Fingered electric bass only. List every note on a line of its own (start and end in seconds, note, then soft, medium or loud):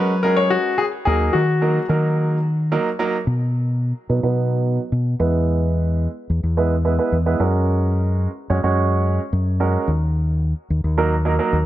0.00 0.56 F#3 medium
1.07 1.29 D#2 loud
1.34 1.78 D#3 medium
1.89 2.76 D#3 medium
3.27 3.92 B2 loud
4.10 4.20 B2 medium
4.23 4.77 B2 medium
4.92 5.14 B2 medium
5.20 6.06 E2 loud
6.30 6.41 E2 medium
6.43 6.98 E2 medium
7.12 7.34 E2 medium
7.40 8.26 F#2 loud
8.50 8.61 F#2 medium
8.64 9.18 F#2 medium
9.33 9.76 F#2 loud
9.88 10.53 D#2 loud
10.70 10.81 D#2 medium
10.84 11.38 D#2 medium
11.53 11.66 D#2 medium